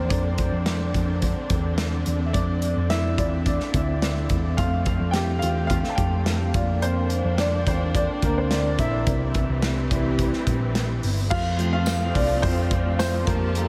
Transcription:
Already playing: D3 F3 A#3 C4 D4 A#4 C5 D5
0.09 F2 D4 D5, kick, closed hi-hat
0.38 kick, closed hi-hat
0.52 F2
0.66 snare, closed hi-hat
0.94 F2, kick, closed hi-hat
1.22 kick, closed hi-hat
1.50 E2, kick, closed hi-hat
1.78 snare, closed hi-hat
2.06 E2, closed hi-hat
2.26 E5
2.33 F2 D4 D5, kick, closed hi-hat
2.62 closed hi-hat
2.76 F2
2.90 E4 E5, snare, closed hi-hat
3.18 E2 C4 D4 E4 F4 D5, kick, closed hi-hat
3.46 D4 D5, kick, closed hi-hat
3.60 snare
3.74 D2 E4 E5, kick, closed hi-hat
4.02 snare, closed hi-hat
4.29 E2, kick, closed hi-hat
4.57 F2 A3 C4 F4 F5, kick, closed hi-hat
4.86 kick, closed hi-hat
5.00 F2
5.11 G4 G5, snare, closed hi-hat
5.39 E2 F5, closed hi-hat
5.43 F4
5.67 A3 C4 F4 F5, kick, closed hi-hat
5.84 snare
5.90 A5
5.95 F2 G4 G5, kick, closed hi-hat
6.26 snare, closed hi-hat
6.53 F2 A#3 D4 F4, kick, closed hi-hat
6.82 C4 C5, closed hi-hat
7.10 closed hi-hat
7.24 F2
7.38 D4 D5, snare, closed hi-hat
7.67 E2 C4 C5, kick, closed hi-hat
7.95 D4 D5, kick, closed hi-hat
8.22 D2 A#3 A#4, kick, closed hi-hat
8.37 C4 C5
8.51 D4 D5, snare, closed hi-hat
8.79 A#1 E4 E5, kick, closed hi-hat
9.07 C2 E3 G3 C4, kick, closed hi-hat
9.34 kick, closed hi-hat
9.50 C2
9.62 snare, closed hi-hat
9.91 C2 G3 C4 E4, kick, closed hi-hat
10.19 kick, closed hi-hat
10.33 snare
10.47 A#1, kick, closed hi-hat
10.75 snare, closed hi-hat
11.03 G1, open hi-hat
11.30 F2 F3 A3 C4 F4 F5, kick, crash
11.58 F3 A3 C4, hi-hat pedal, open hi-hat
11.73 F4 F5
11.86 snare, hi-hat pedal, open hi-hat, tambourine
12.14 C2 D4 D5, kick, hi-hat pedal, open hi-hat
12.42 F2 F3 A3 C4 C5, kick, hi-hat pedal, open hi-hat
12.71 kick, hi-hat pedal, open hi-hat
12.99 C4 C5, snare, hi-hat pedal, open hi-hat, tambourine
13.27 F2 A#3 D4 G4 A#4 A5, kick, hi-hat pedal, open hi-hat
13.55 G3 A#3 A4, hi-hat pedal, open hi-hat

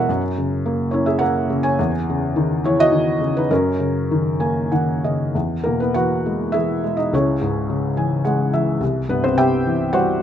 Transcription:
Already playing: E2 B2 E3 G#3 E4 F#4 G#4 A#4 C#5 D#5 E5 F#5
0.09 F#2
0.38 C#3
0.66 A#3
0.91 C#4 E4 C#5
1.06 G#4 E5
1.19 A#4 F#5
1.23 A#3
1.50 C#3
1.63 C#5 G#5
1.79 E2
2.10 C#3
2.36 D#3
2.64 E3 E4 C#5
2.79 F#4 D#5
2.92 D#3
3.21 C#3
3.37 D#4 B4
3.51 F#2 C#4 A#4
3.80 C#3
4.11 D#3
4.40 A#3 G#5
4.72 D#3 F#5
5.04 C#3 D#5
5.35 E2
5.64 B2 A#3 A#4
5.80 B3 B4
5.94 E3 F#4 B4 F#5
6.26 G#3
6.52 E3 E4 G#4 E5
6.84 G#3
6.97 D#4 D#5
7.13 C#2 C#4 E4 G#4 C#5
7.41 G#2
7.70 C#3
7.97 E3 G#5
8.25 G#3 F#5
8.54 E3 E5
8.80 C2
9.09 G2 B3 B4
9.24 C4 C5
9.35 C3 G4 E5 G5
9.66 E3
9.93 G3 F#4 C5 F#5

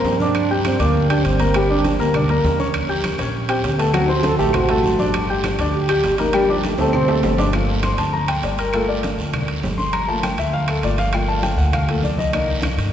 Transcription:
Already playing: A#3 C4 A#4 A#5
0.04 G2, high conga, low timbale, short guiro
0.20 D4 D5 D6, high conga, short guiro
0.35 high conga, high timbale, long guiro, claves
0.50 G4 G5 G6, high conga
0.65 C4, high conga, high timbale, short guiro, claves
0.79 D2 A#3 D4 D5 D6, high conga, high timbale, short guiro
0.95 high conga, long guiro
1.10 D4 G4 G5 G6, high conga, high timbale, claves
1.24 G1 C4, high conga, high timbale, short guiro
1.40 A#3 A#4 A#5, high timbale, short guiro
1.54 G3 G4 G5, high timbale, claves
1.69 D4 D5 D6, high conga
1.84 high conga, high timbale, short guiro
1.99 D2 A#3 A#4 A#5, high conga, short guiro
2.14 D4 D5 D6, high conga, low conga, high timbale, long guiro, claves
2.29 A#3 A#4 A#5, high conga, high timbale
2.44 D#2, high conga, low timbale, short guiro
2.60 C#4 C#5 C#6, high conga, short guiro
2.74 high conga, high timbale, long guiro, claves
2.89 G4 G5 G6, high conga
3.04 high conga, high timbale, short guiro, claves
3.18 A#1 C#4 C#5 C#6, high conga, high timbale, short guiro
3.35 high conga, long guiro
3.49 C4 G4 G5 G6, high conga, high timbale, claves
3.64 D2 C#4, high conga, high timbale, low timbale, short guiro
3.78 A3 B3 A4 A5, high timbale, short guiro
3.94 F#3 C4 F#4 F#5, high conga, high timbale, long guiro, claves
4.05 C4 D#4, high conga
4.09 C5 C6
4.14 F#4
4.23 A4, high conga, high timbale, short guiro
4.39 A1 A3 G4 A4 A5, high conga, short guiro
4.53 C4 F#4 C5 C6, high conga, low conga, high timbale, long guiro, claves
4.69 A3 A4 A5, high conga, low conga, high timbale
4.83 G1, high conga, short guiro
4.99 D4 D5 D6, high conga, short guiro
5.14 high conga, high timbale, long guiro, claves
5.29 G4 G5 G6, high conga
5.44 high conga, high timbale, short guiro, claves
5.58 D2 D4 D5 D6, high conga, high timbale, short guiro
5.74 G4, high conga, long guiro
5.89 G4 G5 G6, high conga, high timbale, claves
6.03 G1, high conga, high timbale, low timbale, short guiro
6.18 A#3 D#4 A#4 A#5, high conga, high timbale, short guiro
6.33 G3 D4 G4 G5, high conga, high timbale, long guiro, claves
6.48 F3 D4 D5 D6, high conga
6.63 A3, high conga, high timbale, short guiro
6.78 D2 A3 C4 A4 A5, high conga, high timbale, short guiro
6.93 C4 C5 C6, high conga, low conga, high timbale, long guiro, claves
7.08 A3 A4 A5, high conga, low timbale
7.23 G1, high conga, low timbale, short guiro
7.38 D4 D5 D6, high conga, low timbale, short guiro
7.53 A3 A#3 F4, high conga, high timbale, long guiro, claves
7.68 high conga
7.83 C6, high conga, high timbale, short guiro, claves
7.97 D2 A5, high conga, high timbale, short guiro
8.13 A#5, high conga, long guiro
8.28 G5, high conga, high timbale, claves
8.42 G1 D5, high conga, high timbale, low timbale, short guiro
8.58 A#4, high timbale, short guiro
8.73 A3 A#3 F4 A4, high conga, high timbale, long guiro, claves
8.89 D5, high conga
9.03 high conga, high timbale, short guiro
9.17 D2, high conga, short guiro
9.34 high conga, low conga, high timbale, long guiro, claves
9.48 high conga, high timbale
9.63 G1, high conga, low timbale, short guiro
9.78 C6, high conga, short guiro
9.93 A#5, high conga, high timbale, long guiro, claves
10.08 A3 A#3 F4 A5, high conga
10.23 G5, high conga, high timbale, short guiro, claves
10.38 D2 E5, high conga, high timbale, short guiro
10.53 F5, high conga, long guiro
10.68 A4, high conga, high timbale, claves
10.82 G1 A3 A#3 F4 D5, high conga, high timbale, short guiro
10.98 F5, high conga, high timbale, short guiro
11.13 A3 A#3 F4 G5, high conga, high timbale, long guiro, claves
11.28 A5, high conga
11.43 G5, high conga, high timbale, short guiro
11.56 D2 F#5, high conga, short guiro
11.73 F5, high conga, low conga, high timbale, long guiro, claves
11.88 A3 A#3 F4 A4, high conga, high timbale
12.02 C2 D5, high conga, short guiro
12.18 D#5, high conga, short guiro
12.33 A#3 D#4 D5, high conga, high timbale, long guiro, claves
12.48 high conga
12.62 high conga, high timbale, short guiro, claves
12.77 G2, high conga, high timbale, short guiro

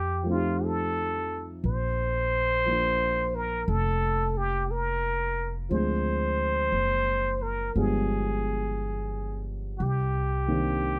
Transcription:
Already playing: F2 G4
0.23 F3 A3
0.29 C4 D#4 F4
0.34 G4
0.65 A4
1.64 A#1 C5
2.65 F3 A#3 D4
2.70 F4
3.35 A#4
3.68 F1 A4
4.37 G4
4.71 A#4
5.69 D2 F3 G#3 C4 D4 C5
5.74 G#4
6.72 F#1
7.42 A#4
7.76 G1 F3 G3 G#3 B3 D4 G#4
9.78 C2 F#4
9.83 G4
10.47 D#3 A#3 C4 D4
10.52 G4

